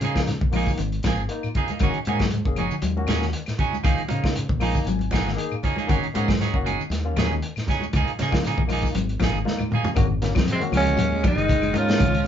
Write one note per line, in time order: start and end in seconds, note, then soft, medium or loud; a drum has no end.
0.01 0.37 C#3 medium
0.01 0.19 F3 medium
0.01 0.19 A#3 medium
0.01 0.19 D#4 medium
0.01 0.20 G#4 medium
0.01 closed hi-hat medium
0.01 high conga medium
0.01 shekere medium
0.15 0.34 F3 medium
0.15 0.28 A#3 medium
0.15 0.28 D#4 medium
0.15 kick medium
0.15 snare medium
0.15 claves medium
0.15 shekere soft
0.19 0.29 F4 medium
0.27 snare soft
0.27 closed hi-hat medium
0.27 high conga medium
0.27 shekere medium
0.41 0.65 A#1 medium
0.41 0.50 D#3 medium
0.41 kick medium
0.51 0.72 F3 medium
0.51 0.71 F3 medium
0.51 0.77 A#3 medium
0.51 0.77 D#4 medium
0.51 0.78 F4 medium
0.51 open hi-hat medium
0.51 high conga medium
0.51 claves medium
0.51 shekere soft
0.56 0.71 A#3 medium
0.56 0.71 D#4 medium
0.56 0.71 G#4 medium
0.67 kick medium
0.67 low conga medium
0.67 shekere medium
0.78 1.02 G#1 medium
0.78 0.97 D#3 medium
0.78 closed hi-hat medium
0.78 shekere medium
0.92 closed hi-hat soft
1.03 1.27 G#1 medium
1.03 1.15 F3 medium
1.03 1.21 F3 medium
1.03 1.22 A#3 medium
1.03 kick medium
1.03 snare medium
1.03 closed hi-hat soft
1.03 high conga medium
1.03 claves medium
1.03 shekere medium
1.07 1.22 G#4 medium
1.18 shekere soft
1.29 1.46 A#3 medium
1.29 1.47 D#4 medium
1.29 1.47 F4 medium
1.29 closed hi-hat medium
1.43 claves medium
1.43 shekere medium
1.55 1.70 F3 medium
1.55 1.70 A#3 medium
1.55 1.69 D#4 medium
1.55 1.70 G#4 medium
1.55 kick medium
1.55 closed hi-hat soft
1.55 low conga medium
1.55 shekere soft
1.68 1.82 A#3 soft
1.68 1.81 D#4 soft
1.68 closed hi-hat soft
1.68 high conga medium
1.68 shekere medium
1.79 1.93 G#1 medium
1.79 1.99 D#3 medium
1.79 1.98 F#3 medium
1.79 1.90 A#3 medium
1.79 1.90 C#4 medium
1.79 1.98 C#4 medium
1.79 1.98 D#4 medium
1.79 1.91 F#4 medium
1.79 kick medium
1.79 closed hi-hat medium
1.79 low conga medium
1.79 claves medium
1.79 shekere medium
1.83 1.98 G#4 medium
1.94 closed hi-hat soft
2.05 2.42 G#2 medium
2.05 2.23 F#3 medium
2.05 2.20 A#3 medium
2.05 2.23 C#4 medium
2.05 2.20 C#4 medium
2.05 2.24 D#4 medium
2.05 2.20 F#4 medium
2.05 2.24 G#4 medium
2.05 closed hi-hat soft
2.05 high conga medium
2.05 shekere medium
2.19 2.39 F#3 medium
2.19 kick medium
2.19 snare medium
2.19 closed hi-hat soft
2.19 claves medium
2.19 shekere soft
2.30 closed hi-hat medium
2.30 high conga medium
2.30 shekere medium
2.45 2.68 F#1 medium
2.45 2.61 A#3 medium
2.45 2.61 C#4 medium
2.45 2.62 G#4 medium
2.45 kick medium
2.56 2.76 F3 medium
2.56 2.74 F#3 medium
2.56 2.74 C#4 medium
2.56 2.74 D#4 medium
2.56 2.75 G#4 medium
2.56 closed hi-hat soft
2.56 high conga medium
2.56 claves medium
2.56 shekere soft
2.71 low conga medium
2.71 shekere medium
2.82 3.06 D#2 medium
2.82 3.01 F#3 medium
2.82 closed hi-hat medium
2.82 high conga medium
2.82 shekere medium
2.97 3.29 A#3 medium
2.97 3.28 C#4 medium
2.97 3.29 F#4 medium
2.97 high conga medium
3.07 3.31 D#2 medium
3.07 3.24 F#3 medium
3.07 3.25 C#4 medium
3.07 3.25 D#4 medium
3.07 3.25 G#4 medium
3.07 snare medium
3.07 closed hi-hat medium
3.07 high conga medium
3.07 claves medium
3.07 shekere medium
3.22 3.41 D#3 medium
3.22 snare soft
3.22 shekere soft
3.33 closed hi-hat medium
3.46 snare soft
3.46 closed hi-hat soft
3.46 claves medium
3.46 shekere medium
3.58 3.75 F#3 medium
3.58 3.76 C#4 medium
3.58 3.76 D#4 medium
3.58 3.76 G#4 medium
3.58 kick medium
3.58 closed hi-hat medium
3.58 low conga medium
3.58 shekere soft
3.73 high conga medium
3.73 shekere medium
3.84 3.97 C#2 medium
3.84 4.04 D#3 medium
3.84 4.01 F3 medium
3.84 4.01 A#3 medium
3.84 4.01 D#4 medium
3.84 4.01 G#4 medium
3.84 kick medium
3.84 closed hi-hat medium
3.84 low conga medium
3.84 claves medium
3.84 shekere medium
3.98 closed hi-hat soft
4.09 4.46 C#3 medium
4.09 4.26 F3 medium
4.09 4.26 A#3 medium
4.09 4.26 D#4 medium
4.09 closed hi-hat medium
4.09 high conga medium
4.09 shekere medium
4.24 4.35 A#3 medium
4.24 4.36 D#4 medium
4.24 4.36 F4 medium
4.24 kick medium
4.24 snare medium
4.24 claves medium
4.24 shekere soft
4.36 closed hi-hat medium
4.36 shekere medium
4.49 4.72 A#1 medium
4.49 4.58 D#3 medium
4.49 kick medium
4.60 4.80 F3 medium
4.60 4.78 F3 medium
4.60 4.85 A#3 medium
4.60 4.78 A#3 medium
4.60 4.86 D#4 medium
4.60 4.78 D#4 medium
4.60 4.86 F4 medium
4.60 4.78 G#4 medium
4.60 4.85 A#5 medium
4.60 open hi-hat medium
4.60 high conga medium
4.60 claves medium
4.60 shekere soft
4.75 kick medium
4.75 low conga medium
4.75 shekere medium
4.86 5.10 G#1 medium
4.86 5.06 F#3 medium
4.86 5.10 G#5 medium
4.86 closed hi-hat medium
4.86 shekere medium
4.99 closed hi-hat soft
4.99 high conga medium
5.11 5.29 F3 medium
5.11 5.23 F3 medium
5.11 5.29 A#3 medium
5.11 5.29 D#4 medium
5.11 5.30 G#4 medium
5.11 5.36 F#5 medium
5.11 kick medium
5.11 snare medium
5.11 closed hi-hat soft
5.11 high conga medium
5.11 claves medium
5.11 shekere medium
5.26 5.45 D#3 medium
5.26 snare soft
5.26 shekere soft
5.35 5.53 A#3 medium
5.35 5.54 D#4 medium
5.35 5.54 G#4 loud
5.35 5.61 F5 medium
5.35 closed hi-hat medium
5.52 claves medium
5.52 shekere medium
5.63 5.78 F3 medium
5.63 5.78 A#3 medium
5.63 5.78 D#4 medium
5.63 5.77 G#4 medium
5.63 5.87 C#5 medium
5.63 kick medium
5.63 closed hi-hat soft
5.63 low conga medium
5.63 shekere soft
5.76 5.90 A#3 soft
5.76 5.89 D#4 medium
5.76 5.90 G#4 soft
5.76 closed hi-hat soft
5.76 high conga medium
5.76 shekere medium
5.87 6.02 G#1 medium
5.87 6.07 D#3 medium
5.87 6.06 F#3 medium
5.87 5.97 A#3 medium
5.87 5.97 C#4 medium
5.87 6.06 C#4 medium
5.87 6.06 D#4 medium
5.87 5.98 F#4 loud
5.87 6.06 G#4 medium
5.87 kick medium
5.87 closed hi-hat medium
5.87 low conga medium
5.87 claves medium
5.87 shekere medium
6.04 closed hi-hat soft
6.14 6.50 G#2 medium
6.14 6.31 F#3 medium
6.14 6.27 A#3 medium
6.14 6.28 C#4 medium
6.14 6.31 C#4 medium
6.14 6.32 D#4 medium
6.14 6.28 F#4 medium
6.14 6.32 G#4 medium
6.14 closed hi-hat medium
6.14 high conga medium
6.14 shekere medium
6.28 6.47 F#3 medium
6.28 kick medium
6.28 snare medium
6.28 closed hi-hat soft
6.28 claves medium
6.40 6.56 F#3 medium
6.40 6.57 C#4 medium
6.40 6.57 D#4 medium
6.40 6.57 G#4 medium
6.40 snare soft
6.40 closed hi-hat medium
6.40 high conga medium
6.40 shekere medium
6.54 6.77 F#1 medium
6.54 6.69 A#3 medium
6.54 6.70 C#4 medium
6.54 6.70 F#4 medium
6.54 kick medium
6.65 6.81 F#3 medium
6.65 6.82 C#4 medium
6.65 6.82 D#4 medium
6.65 6.82 G#4 medium
6.65 closed hi-hat soft
6.65 high conga medium
6.65 claves medium
6.65 shekere soft
6.79 low conga medium
6.79 shekere medium
6.90 7.13 D#2 medium
6.90 muted clean electric guitar stroke medium
6.90 snare soft
6.90 closed hi-hat medium
6.90 high conga medium
6.90 shekere medium
7.05 7.36 A#3 medium
7.05 7.37 C#4 medium
7.05 7.37 F4 medium
7.16 7.39 D#2 medium
7.16 7.27 F3 medium
7.16 7.33 F#3 medium
7.16 7.34 C#4 medium
7.16 7.34 D#4 medium
7.16 7.34 G#4 medium
7.16 snare medium
7.16 closed hi-hat soft
7.16 high conga medium
7.16 claves medium
7.16 shekere medium
7.31 7.50 D#3 medium
7.31 shekere soft
7.42 closed hi-hat medium
7.56 snare soft
7.56 closed hi-hat soft
7.56 claves medium
7.56 shekere medium
7.67 7.84 F#3 medium
7.67 7.85 C#4 medium
7.67 7.85 D#4 medium
7.67 7.85 G#4 medium
7.67 kick medium
7.67 snare soft
7.67 closed hi-hat soft
7.67 low conga medium
7.67 shekere soft
7.81 high conga medium
7.81 shekere medium
7.93 8.06 C#2 medium
7.93 8.11 F3 medium
7.93 8.11 A#3 medium
7.93 8.11 D#4 medium
7.93 8.11 G#4 medium
7.93 muted clean electric guitar stroke medium
7.93 kick medium
7.93 closed hi-hat medium
7.93 low conga medium
7.93 claves medium
7.93 shekere medium
8.08 closed hi-hat soft
8.19 8.54 C#3 medium
8.19 8.36 F3 medium
8.19 8.36 A#3 medium
8.19 8.36 D#4 medium
8.19 8.37 G#4 medium
8.19 snare soft
8.19 closed hi-hat medium
8.19 high conga medium
8.19 shekere medium
8.31 8.51 F3 medium
8.31 8.43 A#3 medium
8.31 8.43 D#4 medium
8.31 8.44 F4 medium
8.31 kick medium
8.31 snare medium
8.31 claves medium
8.31 shekere soft
8.44 8.62 F3 medium
8.44 8.62 A#3 medium
8.44 8.62 D#4 medium
8.44 8.62 G#4 medium
8.44 snare soft
8.44 closed hi-hat medium
8.44 shekere medium
8.58 8.81 A#1 medium
8.58 8.66 D#3 medium
8.58 kick medium
8.68 8.88 F3 medium
8.68 8.93 A#3 medium
8.68 8.93 D#4 medium
8.68 8.94 F4 medium
8.68 open hi-hat medium
8.68 high conga medium
8.68 claves medium
8.72 8.87 F3 medium
8.72 8.87 A#3 medium
8.72 8.87 D#4 medium
8.72 8.87 G#4 medium
8.72 shekere soft
8.82 kick medium
8.82 low conga medium
8.82 shekere medium
8.95 9.18 G#1 medium
8.95 9.14 F#3 medium
8.95 closed hi-hat medium
8.95 high conga medium
8.95 shekere medium
9.09 closed hi-hat soft
9.20 9.43 G#1 medium
9.20 9.30 F3 medium
9.20 9.38 F3 medium
9.20 9.38 A#3 medium
9.20 9.38 D#4 medium
9.20 kick medium
9.20 snare medium
9.20 closed hi-hat soft
9.20 high conga medium
9.20 claves medium
9.20 shekere medium
9.24 9.38 G#4 medium
9.33 9.52 D#3 medium
9.33 shekere soft
9.45 9.62 A#3 medium
9.45 9.63 D#4 medium
9.45 9.63 F4 loud
9.45 snare soft
9.45 high conga medium
9.59 high conga loud
9.59 claves medium
9.59 shekere medium
9.71 9.89 F3 medium
9.71 9.89 A#3 medium
9.71 9.89 D#4 medium
9.71 9.89 G#4 medium
9.71 mid tom medium
9.71 low conga medium
9.71 shekere soft
9.85 floor tom medium
9.85 low conga medium
9.85 shekere medium
9.95 10.32 G#1 loud
9.95 10.15 D#3 loud
9.95 10.05 A#3 medium
9.95 10.05 C#4 medium
9.95 10.06 F#4 loud
9.95 kick loud
9.95 closed hi-hat medium
9.95 low conga medium
9.95 claves medium
9.95 shekere medium
10.22 10.31 A#3 medium
10.22 10.31 C#4 medium
10.22 10.32 F4 medium
10.22 snare soft
10.22 closed hi-hat medium
10.22 low conga medium
10.22 shekere soft
10.35 10.59 F2 medium
10.35 10.54 F#3 medium
10.35 kick medium
10.35 snare medium
10.35 closed hi-hat soft
10.35 claves medium
10.48 10.62 C3 medium
10.48 10.52 C#4 medium
10.48 10.53 F#4 medium
10.48 closed hi-hat medium
10.48 shekere medium
10.52 10.63 G#3 medium
10.52 10.63 C4 medium
10.60 10.70 D#3 medium
10.60 10.92 A#3 medium
10.60 10.93 C#4 medium
10.60 10.93 F#4 medium
10.60 closed hi-hat soft
10.72 10.95 C#2 medium
10.72 11.22 C#3 medium
10.72 10.91 F3 medium
10.72 open hi-hat medium
10.72 high conga medium
10.72 claves medium
10.72 shekere soft
10.77 11.24 G#3 medium
10.77 11.23 C#4 medium
10.87 closed hi-hat soft
10.87 low conga medium
10.97 11.21 D#2 medium
10.97 11.16 F#3 medium
10.97 closed hi-hat medium
10.97 shekere medium
11.12 high conga medium
11.23 11.78 D#3 medium
11.23 11.34 F3 medium
11.23 11.78 D#4 medium
11.23 kick medium
11.23 closed hi-hat medium
11.23 high conga loud
11.23 claves medium
11.23 shekere soft
11.29 11.79 G#3 medium
11.35 11.74 F#1 medium
11.35 11.56 D#3 medium
11.35 closed hi-hat soft
11.49 kick medium
11.49 closed hi-hat medium
11.49 high conga medium
11.49 shekere medium
11.62 closed hi-hat soft
11.62 high conga medium
11.62 claves medium
11.73 12.02 G#2 medium
11.73 12.00 A#3 medium
11.73 12.01 C#4 medium
11.73 12.01 D#4 medium
11.73 12.27 F4 loud
11.73 closed hi-hat medium
11.73 high conga medium
11.73 shekere soft
11.77 12.26 F3 medium
11.77 12.27 C#4 medium
11.89 snare medium
11.89 closed hi-hat soft
11.99 12.27 C#2 loud
11.99 12.19 D#3 medium
11.99 kick loud
11.99 closed hi-hat medium
11.99 low conga medium
11.99 claves medium
11.99 shekere medium
12.15 closed hi-hat soft
12.24 low conga medium
12.24 shekere soft